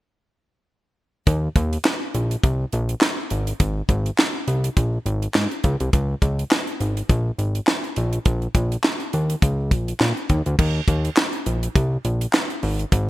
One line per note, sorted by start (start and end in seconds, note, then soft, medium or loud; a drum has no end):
1.27 1.49 D#2 loud
1.27 kick loud
1.27 closed hi-hat medium
1.56 1.78 D#2 loud
1.56 kick medium
1.56 closed hi-hat medium
1.73 closed hi-hat soft
1.84 snare loud
1.84 clap medium
2.14 2.36 A#1 medium
2.14 closed hi-hat medium
2.31 closed hi-hat medium
2.43 2.65 C2 medium
2.43 kick loud
2.43 closed hi-hat medium
2.73 2.95 A#1 medium
2.73 closed hi-hat medium
2.89 closed hi-hat medium
3.01 snare loud
3.01 clap medium
3.30 3.53 G#1 medium
3.30 closed hi-hat medium
3.47 closed hi-hat medium
3.60 3.82 G#1 loud
3.60 kick loud
3.60 closed hi-hat medium
3.89 4.11 G#1 loud
3.89 kick medium
3.89 closed hi-hat medium
4.06 closed hi-hat soft
4.18 snare loud
4.18 clap medium
4.48 4.69 C2 medium
4.48 closed hi-hat medium
4.64 closed hi-hat medium
4.77 4.99 A#1 medium
4.77 kick medium
4.77 closed hi-hat medium
5.06 5.28 G#1 medium
5.06 closed hi-hat medium
5.22 closed hi-hat medium
5.34 5.47 G#2 loud
5.34 snare loud
5.34 clap medium
5.51 closed hi-hat soft
5.64 5.76 C#2 loud
5.64 kick medium
5.64 closed hi-hat medium
5.80 5.90 C2 medium
5.80 closed hi-hat medium
5.93 6.15 C#2 loud
5.93 kick loud
5.93 closed hi-hat medium
6.22 6.44 C#2 loud
6.22 kick medium
6.22 closed hi-hat medium
6.39 closed hi-hat soft
6.51 snare loud
6.51 clap medium
6.67 closed hi-hat soft
6.80 7.02 G#1 medium
6.80 closed hi-hat medium
6.97 closed hi-hat medium
7.09 7.31 A#1 loud
7.09 kick loud
7.09 closed hi-hat medium
7.38 7.60 G#1 medium
7.38 closed hi-hat medium
7.55 closed hi-hat soft
7.67 snare loud
7.67 clap medium
7.84 closed hi-hat soft
7.96 8.19 A#1 medium
7.96 closed hi-hat medium
8.13 closed hi-hat medium
8.25 8.48 A#1 loud
8.25 kick loud
8.25 closed hi-hat medium
8.42 closed hi-hat soft
8.55 8.77 A#1 loud
8.55 kick medium
8.55 closed hi-hat medium
8.72 closed hi-hat medium
8.84 snare loud
8.84 clap medium
9.00 closed hi-hat soft
9.13 9.36 D#2 medium
9.13 closed hi-hat medium
9.30 closed hi-hat medium
9.42 9.73 C#2 medium
9.42 kick loud
9.42 closed hi-hat medium
9.71 9.93 A#1 medium
9.71 kick medium
9.71 closed hi-hat medium
9.88 closed hi-hat medium
10.00 10.13 A#2 loud
10.00 snare medium
10.00 clap medium
10.17 closed hi-hat soft
10.29 10.42 D#2 loud
10.29 kick medium
10.29 closed hi-hat medium
10.46 10.56 D2 medium
10.46 closed hi-hat medium
10.59 10.81 D#2 loud
10.59 kick loud
10.59 crash medium
10.88 11.10 D#2 medium
10.88 kick medium
10.88 closed hi-hat medium
11.05 closed hi-hat medium
11.17 snare loud
11.17 clap medium
11.33 closed hi-hat soft
11.46 11.68 A#1 medium
11.46 closed hi-hat medium
11.63 closed hi-hat medium
11.76 11.98 C2 medium
11.76 kick loud
11.76 closed hi-hat medium
12.05 12.27 A#1 medium
12.05 closed hi-hat medium
12.21 closed hi-hat medium
12.33 snare loud
12.33 clap medium
12.50 closed hi-hat soft
12.63 12.85 G#1 loud
12.63 open hi-hat medium
12.79 closed hi-hat soft
12.92 13.10 G#1 loud
12.92 kick loud
12.92 closed hi-hat loud